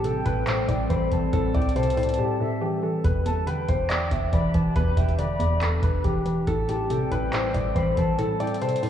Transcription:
Already playing: A1 A2 G3 C4 A4
0.04 C3 A4 G5, closed hi-hat
0.26 A1 A2 B4, kick, closed hi-hat
0.47 A2 C5, clap, closed hi-hat
0.68 A1 A2 D5, kick, closed hi-hat
0.90 A1 E3 C5 B5, kick, closed hi-hat
1.11 A1 E3 A5, kick, closed hi-hat
1.33 A1 A2 A4, kick, closed hi-hat
1.54 C2 A2 D5 G5, kick, closed hi-hat
1.61 closed hi-hat
1.69 closed hi-hat
1.76 C3 C5 A5, closed hi-hat
1.83 closed hi-hat
1.90 closed hi-hat
1.97 A2 C5, closed hi-hat, open hi-hat
2.03 closed hi-hat
2.09 closed hi-hat
2.14 closed hi-hat
2.19 A2 G4
2.40 A2 A4 E5
2.61 E3 G4
2.83 E3 A4
3.04 E1 E2 E3 D4 G4 B4, kick, closed hi-hat
3.26 G1 E2 A4 A5, closed hi-hat
3.47 D3 B4 G5, closed hi-hat
3.69 E1 E2 C5, kick, closed hi-hat
3.90 E2 D5, clap, closed hi-hat
4.11 E1 E2 E5, kick, closed hi-hat
4.33 E1 E3 D5 B5, kick, closed hi-hat
4.54 E1 E3 A5, kick, closed hi-hat
4.76 E1 E2 B4, kick, closed hi-hat
4.97 E1 E2 E5 G5, kick, closed hi-hat
5.09 closed hi-hat
5.19 D3 D5 B5, closed hi-hat
5.40 E2 D5, closed hi-hat
5.62 E2 A4, clap, closed hi-hat
5.83 E1 E2 B4, kick, closed hi-hat
6.04 E1 E3 G4, kick, closed hi-hat
6.26 E3, closed hi-hat
6.47 A1 A2 G3 C4 A4, kick, closed hi-hat
6.69 A2 G4 A5, closed hi-hat
6.90 C3 A4 G5, closed hi-hat
7.11 A1 A2 B4, kick, closed hi-hat
7.33 A2 C5, clap, closed hi-hat
7.54 A1 A2 D5, kick, closed hi-hat
7.75 A1 E3 C5 B5, kick, closed hi-hat
7.97 A1 E3 A5, kick, closed hi-hat
8.18 A2 A4, closed hi-hat
8.40 A2 D5 G5, closed hi-hat
8.47 closed hi-hat
8.54 closed hi-hat
8.61 C3 C5 A5, closed hi-hat
8.69 closed hi-hat
8.76 closed hi-hat
8.83 A2 C5, closed hi-hat, open hi-hat

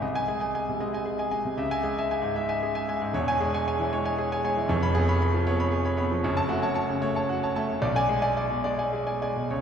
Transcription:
0.02 C2 D#5
0.15 D#5 G#5
0.28 G#3 G#4
0.40 D#5 G#5
0.55 D#5 G#5
0.69 C3
0.80 G#3 D#5
0.93 D#5 G#5
1.05 G#4
1.18 D#5 G#5
1.31 G#3 D#5 G#5
1.45 C3
1.57 C#2 E5
1.71 E5 G#5
1.83 G#3 G#4
1.98 E5 G#5
2.10 E5 G#5
2.22 G#2
2.35 G#3 E5
2.49 E5 G#5
2.62 G#4
2.75 E5 G#5
2.88 G#3 E5 G#5
3.02 G#2
3.13 E1 E2 C#5
3.28 C#5 G#5
3.40 G#3 G#4
3.54 C#5 G#5
3.67 C#5 G#5
3.79 E3
3.93 G#3 C#5
4.05 C#5 G#5
4.18 G#4
4.32 C#5 G#5
4.44 G#3 C#5 G#5
4.57 E3
4.68 F1 F2 C#5
4.82 C#5 B5
4.95 B3 G#4
5.08 C#5 B5
5.21 C#5 B5
5.34 F3
5.47 B3 C#5
5.60 C#5 B5
5.72 G#4
5.85 C#5 B5
5.97 B3 C#5 B5
6.11 F3
6.23 F#1 F#2 C#5
6.36 C#5 A5
6.49 A3 F#4
6.62 C#5 A5
6.74 C#5 A5
6.89 C#3
7.02 A3 C#5
7.15 C#5 A5
7.29 F#4
7.43 C#5 A5
7.56 A3 C#5 A5
7.70 C#3
7.82 B1 D5
7.96 D5 G#5
8.09 G#3 G#4
8.22 D5 G#5
8.36 D5 G#5
8.50 B2
8.64 G#3 D5
8.78 D5 G#5
8.93 G#4
9.07 D5 G#5
9.22 G#3 D5 G#5
9.36 B2
9.50 C#2 C#5

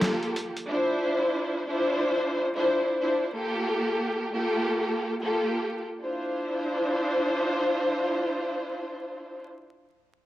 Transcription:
Already playing: A#3 F4 G4 A4
0.02 snare, clap, closed hi-hat
0.23 closed hi-hat
0.36 closed hi-hat
0.57 closed hi-hat
0.68 D4 E4 F4 C5
1.66 D4 E4 F4 C5
2.54 D4 E4 F4 C5
3.00 D4 E4 F4 C5
3.32 A#3 F4 G4 A4
4.32 A#3 F4 G4 A4
5.21 A#3 F4 G4 A4
6.01 D4 E4 F4 C5

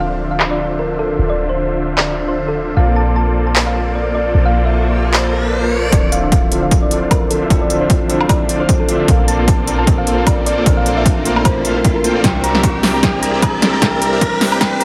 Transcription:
Already playing: D1 D3 F3 C4 D4 F4 A4 C5 E5
0.00 F5
0.31 F5
0.40 clap
0.51 D5
0.79 A#4
0.99 A4
1.19 D1
1.30 D5
1.49 C5
1.98 D5, clap
2.28 C5
2.48 A4
2.75 A#1 F3 A#3 C4 D4 F4 A4 C5 D5 F5, riser
2.96 A5
3.16 A5
3.47 A5
3.56 clap
3.67 F5
3.95 D5
4.15 D5
4.34 A#1
4.45 F5
4.65 E5
5.14 C5, clap
5.44 A#4
5.64 A#4
5.90 D1 D3 F3 C4 D4 E4 F4 C5 D5 E5, kick, closed hi-hat, riser
5.95 A4
6.12 D3 D4 F4 C5 E5 F5, closed hi-hat
6.23 D3 D4 F4 C5 E5
6.32 D3 D4 F4 C5 E5 F5, kick, closed hi-hat
6.51 D3 F3 C4 D4 E4 F4 A4 C5 E5, closed hi-hat
6.63 D3 D4 F4 C5 F5
6.71 D3 D4 F4 C5 E5, kick, closed hi-hat
6.82 D5
6.89 D3 F3 C4 D4 E4 F4 C5 D5, closed hi-hat
6.93 A4
7.02 D3 D4 F4 C5 F5
7.11 D3 D4 F4 A#4 C5 D5, kick, closed hi-hat, high woodblock
7.31 D3 D4 F4 A4 C5 E5, closed hi-hat
7.42 D3 D4 F4 C5 E5
7.48 D1 D3 F3 C4 D4 E4 F4 A4 C5 E5, kick, closed hi-hat
7.61 D5
7.70 D3 D4 F4 C5 E5, closed hi-hat
7.81 D3 D4 F4 C5 E5
7.90 D3 D4 F4 C5 E5, kick, closed hi-hat
8.09 D3 F3 C4 D4 E4 F4 A4 C5 E5, closed hi-hat
8.21 D3 D4 F4 C5 F5, high woodblock
8.29 D3 D4 F4 C5 D5 E5, kick, closed hi-hat, high woodblock
8.49 D3 D4 F4 C5 D5, closed hi-hat
8.60 D3 D4 F4 C5 F5
8.69 D3 D4 F4 C5 D5, kick, closed hi-hat
8.80 A4
8.88 D3 F3 C4 D4 E4 F4 C5 D5 E5, closed hi-hat
8.99 D3 D4 F4 C5 E5
9.06 A#1 A#3 C4 D4 F4 A4 A#4 C5 D5 F5, kick, closed hi-hat
9.28 A#3 F4 A4 C5 D5 A5, closed hi-hat
9.39 A#3 F4 A4 C5 D5
9.48 A#3 F4 A4 C5 D5 A5, kick, closed hi-hat
9.66 A#3 C4 D4 F4 A4 A#4 C5 D5, closed hi-hat
9.78 A#3 F4 A4 C5 F5 A5
9.87 A#3 F4 A4 C5 D5, kick, closed hi-hat
9.98 F5
10.05 A#3 C4 D4 F4 A4 C5 D5, closed hi-hat
10.09 A#4
10.18 A#3 F4 A4 C5 F5
10.27 A#3 F4 A4 C5 D5, kick, closed hi-hat, high woodblock
10.46 A#3 F4 A4 C5 D5, closed hi-hat
10.57 A#3 F4 A4 C5 D5
10.64 A#1 A#3 C4 D4 F4 A4 C5 D5, kick, closed hi-hat
10.68 A#4
10.77 F5
10.86 A#3 F4 A4 C5 D5, closed hi-hat
10.97 A#3 F4 A4 C5 D5 E5
11.06 A#3 F4 A4 C5 D5, kick, closed hi-hat
11.24 A3 A#3 C4 D4 F4 A4 A#4 C5 D5, closed hi-hat
11.36 A#3 F4 A4 C5 F5, high woodblock
11.45 A#3 F4 A4 C5 D5, kick, closed hi-hat, high woodblock
11.65 A#3 F4 A4 C5 F5, closed hi-hat
11.74 A3 C4 D4 F4 A4 A#4
11.85 A#3 F4 A4 C5 F5, kick, closed hi-hat
11.95 A#4
12.04 A#3 F4 A4 C5 G5, closed hi-hat
12.15 A#3 F4 A4 C5 D5
12.22 C2 G3 C4 D4 E4 G4 A#4 D5 E5 G5, kick, snare, closed hi-hat
12.26 A#4
12.44 C4 G4 A#4 D5 E5 A#5, closed hi-hat
12.55 C4 G4 A#4 D5 E5, snare
12.63 C4 G4 A#4 D5 E5 A#5, kick, closed hi-hat
12.82 G3 C4 D4 E4 G4 A#4 D5 E5, snare, open hi-hat
12.94 C4 G4 A#4 D5 G5 A#5
13.01 G3 C4 D4 E4 G4 A#4 D5 E5 G5, kick, snare, closed hi-hat
13.23 C4 G4 A#4 D5 E5 A#5, closed hi-hat
13.34 C4 G4 A#4 D5 E5
13.42 C4 G4 A#4 D5 E5 A#5, kick, closed hi-hat, high woodblock
13.61 G3 C4 D4 E4 G4 A#4 D5 E5, snare, closed hi-hat
13.73 C4 G4 A#4 D5 G5 A#5
13.80 C2 G3 C4 D4 E4 G4 A#4 D5 E5 G5, kick, snare, closed hi-hat
14.02 C4 G4 A#4 D5 E5 A#5, closed hi-hat
14.13 C4 G4 A#4 D5 E5
14.21 C4 G4 A#4 D5 E5 A#5, kick, closed hi-hat
14.40 G3 C4 D4 E4 G4 A#4 D5 E5, snare, open hi-hat
14.52 C4 G4 A#4 D5 G5 A#5, high woodblock
14.59 G3 C4 E4 G4 A#4 D5 E5 G5, kick, snare, closed hi-hat, high woodblock
14.80 C4 G4 A#4 D5 E5 A#5, closed hi-hat

